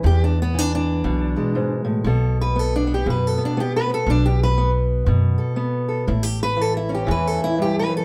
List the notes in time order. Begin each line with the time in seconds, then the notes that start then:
0.03 E2 G4
0.24 D4
0.42 B3
0.54 E3
0.58 D4
0.75 D4
1.04 B1 B2
1.36 G#3
1.55 G#2
1.85 A2
2.04 B1 B2 A4
2.41 B4
2.56 B3 A4
2.76 D4
2.87 B3
2.94 G4
3.06 F#2 B2
3.10 B4
3.27 A4
3.38 B3
3.45 D4
3.57 B3 G4
3.76 B4
3.90 B3
3.94 A4
4.06 B1 B2 D4
4.26 G4
4.43 B4
4.58 B3
5.06 F#2 B2
5.38 A4
5.56 B3
5.88 A4
6.07 A1 A2 E4
6.23 G4
6.43 B4
6.57 E3
6.61 A4
6.77 E4
6.89 C#4
6.95 G4
7.07 E2 E3
7.11 B4
7.27 A4
7.38 E4
7.44 E4
7.58 G2 G4
7.79 B4
7.88 F#2
7.97 A4